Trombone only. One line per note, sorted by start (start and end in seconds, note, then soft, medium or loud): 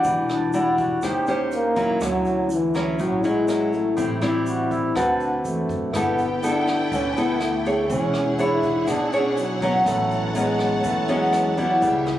0.00 0.30 G3 medium
1.54 2.04 A#3 loud
2.03 2.51 F#3 medium
2.52 2.97 E3 medium
2.99 3.27 F#3 medium
3.26 3.75 G#3 medium
3.73 4.22 A3 medium
5.46 5.96 A3 medium
5.95 6.43 B3 medium
6.44 6.89 D4 medium
6.92 7.15 C#4 medium
7.16 7.43 B3 medium
7.41 7.89 A3 medium
7.89 8.35 C#4 loud
8.39 8.84 E4 medium
8.88 9.11 D4 loud
9.12 9.39 C#4 medium
9.37 9.86 F#3 medium
9.86 10.37 A3 loud
10.36 10.85 G#3 medium
10.85 11.12 A3 medium
11.10 11.60 G#3 medium
11.58 11.83 F#3 medium
11.84 12.06 G3 medium